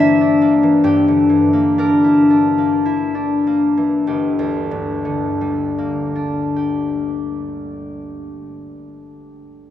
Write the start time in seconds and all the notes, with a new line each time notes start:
Already playing: G2 D3 E3 G3 A#3 D4 A#4 D5
0.00 E4 E5
0.21 D4
0.41 A#3
0.63 E3
0.84 G2 G4
1.08 D3
1.29 E3
1.53 A#3
1.78 D4 A#4
2.04 E4
2.30 D4
2.58 A#3
2.85 E4
3.15 D4
3.47 A#3
3.77 E3
4.07 G1 G4
4.39 D2
4.71 G2
5.05 D3
5.41 G3
5.78 A#3
6.16 D4
6.56 G4